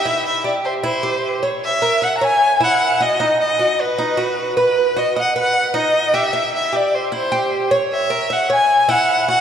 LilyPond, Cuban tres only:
\new Staff \with { instrumentName = "Cuban tres" } { \time 4/4 \key c \lydian \tempo 4 = 153 e'4 g'4 e'8 g'4 cis''8~ | cis''8 ais'8 e''8 cis''4 e'4 fis'8 | dis'4 fis'4 dis'8 fis'4 b'8~ | b'8 fis'8 dis''8 b'4 dis'4 g'8 |
e'4 g'4 e'8 g'4 cis''8~ | cis''8 ais'8 e''8 cis''4 e'4 fis'8 | }